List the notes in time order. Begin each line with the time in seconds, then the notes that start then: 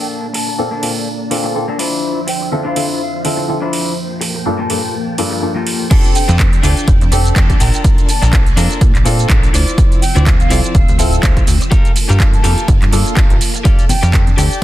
Already playing: A#3 D4 A4 A5
0.33 A5, muted clean electric guitar stroke, open hi-hat
0.47 muted clean electric guitar stroke
0.58 A#2 C4 D4 F4 A4
0.71 A#3 D4 A4
0.82 A#2 C4 D4 F4 A4, open hi-hat
1.30 A#2 C4 D4 F4 A4, open hi-hat
1.44 muted clean electric guitar stroke
1.55 A#2 C4 D4 F4 A4, muted clean electric guitar stroke
1.68 A#3 D4 A4
1.79 F3 D4 E4 F4 C5 E5, open hi-hat
2.27 G5, muted clean electric guitar stroke, open hi-hat
2.41 muted clean electric guitar stroke
2.52 D3 C4 E4 F4 A4
2.65 D4 E4 F4 C5 F5
2.76 D3 C4 E4 F4 A4, open hi-hat
3.00 F5
3.24 D3 C4 E4 F4 A4, open hi-hat
3.37 muted clean electric guitar stroke
3.48 D3 C4 E4 F4 A4, muted clean electric guitar stroke
3.62 D4 E4 F4 C5
3.73 open hi-hat
3.97 A#3 G5 A5
4.21 muted clean electric guitar stroke, open hi-hat
4.34 muted clean electric guitar stroke
4.45 G2 A#3 D4 F4 A4
4.58 A#3 F4 G4 A4 A5
4.70 G2 A#3 D4 F4 A4, open hi-hat
5.18 G2 A#3 D4 F4 A4, open hi-hat
5.31 muted clean electric guitar stroke
5.42 G2 A#3 D4 F4 A4, muted clean electric guitar stroke
5.55 A#3 F4 G4 A4
5.67 open hi-hat
5.90 C4 D4 F4 G4 A4 G5 A5, kick, closed hi-hat, crash, shaker
6.04 closed hi-hat, shaker
6.15 G5, open hi-hat, shaker
6.28 F2 D4 F4 G4 A4, closed hi-hat, shaker
6.39 C4 D4 G4 A4, kick, clap, closed hi-hat, shaker
6.53 closed hi-hat, shaker
6.63 D2 C4 D4 F4 G4 A4, open hi-hat, shaker
6.77 closed hi-hat, shaker
6.88 F1, kick, closed hi-hat, shaker
7.01 F2, closed hi-hat, shaker
7.11 F1 C4 D4 G4 A4, muted clean electric guitar stroke, open hi-hat, shaker
7.25 closed hi-hat, shaker
7.35 F2 C4 D4 F4 G4 A4, kick, clap, closed hi-hat, shaker
7.50 kick, closed hi-hat, shaker
7.59 A#1 A#3 D4 F4 A4 A#4 D5 G5, open hi-hat, shaker
7.73 G5, closed hi-hat, shaker
7.84 kick, closed hi-hat, shaker
7.98 closed hi-hat, shaker
8.09 A5, open hi-hat, shaker
8.22 A#1 D4 F4 A4 A#4, closed hi-hat, shaker
8.32 C4 D4 F4 A4, kick, clap, closed hi-hat, shaker
8.46 closed hi-hat, shaker
8.56 F2 C4 D4 F4 A4 A#4, open hi-hat, shaker
8.71 closed hi-hat, shaker
8.81 A#2, kick, closed hi-hat, shaker
8.95 A#1, clap, closed hi-hat, shaker
9.05 A#2 C4 D4 F4 A4, muted clean electric guitar stroke, open hi-hat, shaker
9.19 closed hi-hat, shaker
9.29 A#1 C4 D4 F4 A4 A#4, kick, clap, closed hi-hat, shaker
9.43 closed hi-hat, shaker
9.53 D2 F3 C4 E4 F4 C5 D5 E6, open hi-hat, shaker
9.67 closed hi-hat, shaker
9.78 kick, closed hi-hat, shaker
9.92 closed hi-hat, shaker
10.02 G5, open hi-hat, shaker
10.15 D2 E4 F4 C5 D5, closed hi-hat, shaker
10.26 C4 E4 F4 A4, kick, clap, closed hi-hat, shaker
10.40 F5, closed hi-hat, shaker
10.50 C2 C4 E4 F4 A4 C5 D5, open hi-hat, shaker
10.64 closed hi-hat, shaker
10.75 D1 F5, kick, closed hi-hat, shaker
10.88 D2, closed hi-hat, shaker
10.98 D1 C4 E4 F4 A4, muted clean electric guitar stroke, open hi-hat, shaker
11.13 closed hi-hat, shaker
11.22 D2 C4 E4 F4 A4 C5 F5, kick, clap, closed hi-hat, shaker
11.37 kick, closed hi-hat, shaker
11.47 D2, open hi-hat, shaker
11.60 muted clean electric guitar stroke, closed hi-hat, shaker
11.71 A#3 F4 G4 A4 A#4 F5 A5, kick, closed hi-hat, shaker
11.85 closed hi-hat, shaker
11.96 open hi-hat, shaker
12.09 G2 G4 A4 A#4 F5, closed hi-hat, shaker
12.19 A#3 D4 F4 A4, kick, clap, closed hi-hat, shaker
12.33 A5, closed hi-hat, shaker
12.43 F2 A#3 D4 F4 G4 A4 A#4 F5, open hi-hat, shaker
12.58 closed hi-hat, shaker
12.68 G1, kick, closed hi-hat, shaker
12.82 G2, clap, closed hi-hat, shaker
12.92 G2 A#3 D4 F4 A4, muted clean electric guitar stroke, open hi-hat, shaker
13.06 closed hi-hat, shaker
13.16 A#3 D4 G4 A4 A#4 F5, kick, clap, closed hi-hat, shaker
13.30 G1, closed hi-hat, shaker
13.41 open hi-hat, shaker
13.54 muted clean electric guitar stroke, closed hi-hat, shaker
13.64 D4 G4 A4 D5 F5 G5, kick, closed hi-hat, tambourine, shaker
13.79 closed hi-hat, shaker
13.89 G5, open hi-hat, tambourine, high conga, low conga, shaker
14.02 F2 G4 A4 D5 F5, closed hi-hat, tambourine, shaker
14.13 C4 D4 G4 A4, kick, clap, closed hi-hat, shaker
14.27 closed hi-hat, high conga, shaker
14.37 D2 C4 D4 G4 A4 D5 G5, open hi-hat, tambourine, shaker
14.51 closed hi-hat, tambourine, shaker